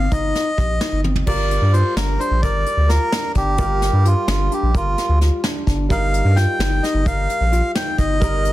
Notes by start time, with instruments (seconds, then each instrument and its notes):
Already playing: melodica F5
0.11 analog synth bass G1, tine electric piano D#4, melodica D#5, kick, closed hi-hat
0.35 snare, closed hi-hat
0.58 analog synth bass A#1, tine electric piano G4, kick, snare, closed hi-hat
0.81 tine electric piano D#4, snare, closed hi-hat
0.92 analog synth bass G1
1.04 tine electric piano C4, high tom
1.16 floor tom
1.26 analog synth bass G1, grand piano G3 F4 A#4, tine electric piano A#4, melodica D5, kick, crash
1.51 closed hi-hat
1.62 analog synth bass G2
1.73 tine electric piano F4, melodica C5, closed hi-hat
1.96 analog synth bass G1, tine electric piano D4, melodica A#4, snare, closed hi-hat
2.19 tine electric piano D4, melodica C5, closed hi-hat
2.31 analog synth bass A#1
2.42 analog synth bass G1, tine electric piano A#4, melodica D5, kick, closed hi-hat
2.66 closed hi-hat
2.77 analog synth bass D2
2.89 tine electric piano F4, melodica A#4, snare, closed hi-hat
3.12 tine electric piano D4, snare, closed hi-hat
3.35 analog synth bass G1, tine electric piano D4, melodica G4, kick, snare, closed hi-hat
3.58 analog synth bass G1, grand piano G3 F4 A#4, tine electric piano A#4, kick, closed hi-hat
3.82 snare, closed hi-hat
3.93 analog synth bass G2
4.05 tine electric piano F4, melodica F4, closed hi-hat
4.28 analog synth bass G1, tine electric piano D4, melodica F4, snare, closed hi-hat
4.51 tine electric piano D4, melodica G4, closed hi-hat
4.63 analog synth bass A#1
4.75 analog synth bass G1, melodica F4, tine electric piano A#4, kick, closed hi-hat
4.98 snare, closed hi-hat
5.09 analog synth bass D2
5.21 tine electric piano F4, snare, closed hi-hat
5.44 tine electric piano D4, snare, closed hi-hat
5.67 analog synth bass G1, tine electric piano D4, kick, snare, closed hi-hat
5.89 analog synth bass G1, grand piano G3 D#4 A#4, tine electric piano A#4, melodica F5, kick, closed hi-hat
6.14 closed hi-hat
6.25 analog synth bass G2
6.36 tine electric piano F4, melodica G5, snare, closed hi-hat
6.59 analog synth bass G1, tine electric piano D#4, snare, closed hi-hat
6.83 tine electric piano D#4, melodica D#5, snare, closed hi-hat
6.94 analog synth bass G1
7.06 analog synth bass G1, tine electric piano A#4, melodica F5, kick, closed hi-hat
7.29 closed hi-hat
7.41 analog synth bass A#1
7.52 tine electric piano F4, closed hi-hat
7.75 tine electric piano D#4, melodica G5, snare, closed hi-hat
7.98 analog synth bass G1, tine electric piano D#4, melodica D#5, kick, snare, closed hi-hat
8.20 analog synth bass G1, grand piano G3 D#4 A#4, tine electric piano A#4, kick, closed hi-hat
8.45 closed hi-hat